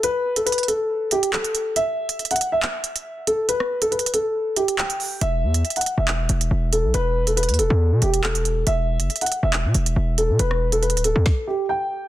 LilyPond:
<<
  \new Staff \with { instrumentName = "Grand piano" } { \time 4/4 \key e \minor \tempo 4 = 139 b'8. a'16 b'8 a'4 g'8 r4 | e''4~ e''16 fis''8 e''4.~ e''16 a'8 | b'8. a'16 b'8 a'4 g'8 g''4 | e''4~ e''16 fis''8 e''4.~ e''16 a'8 |
b'8. a'16 b'8 a'4 g'8 a'4 | e''4~ e''16 fis''8 e''4.~ e''16 a'8 | b'8. a'16 b'8 a'4 g'8 g''4 | }
  \new Staff \with { instrumentName = "808-style bass" } { \clef bass \time 4/4 \key e \minor r1 | r1 | r1 | e,,8 e,8 r8. e,,8. e,,8 e,,8. b,,16 |
e,,4~ e,,16 e,16 e,,16 e,8 b,16 e,,4. | e,,8. fis,,16 r8. e,,8 b,16 e,,8 e,,8. b,16 | e,,4~ e,,16 d,,8 e,16 r2 | }
  \new DrumStaff \with { instrumentName = "Drums" } \drummode { \time 4/4 hh8. hh16 hh32 hh32 hh32 hh32 hh8 r8 hh16 hh16 hc16 hh16 hh8 | hh8. hh16 hh32 hh32 hh32 hh32 hh8 hc8 hh16 hh16 r8 hh8 | hh16 ss8 hh16 \tuplet 3/2 { hh16 hh16 hh16 hh16 r16 r16 } r8 hh16 hh16 hc16 hh16 hho8 | hh8. hh16 hh32 hh32 hh32 hh32 hh8 hc8 hh16 hh16 r8 hh8 |
hh8. hh16 hh32 hh32 hh32 hh32 hh8 r8 hh16 hh16 hc16 hh16 hh8 | hh8. hh16 hh32 hh32 hh32 hh32 hh8 hc8 hh16 hh16 r8 hh8 | hh16 ss8 hh16 \tuplet 3/2 { hh16 hh16 hh16 hh16 r16 r16 } <bd sn>4 r4 | }
>>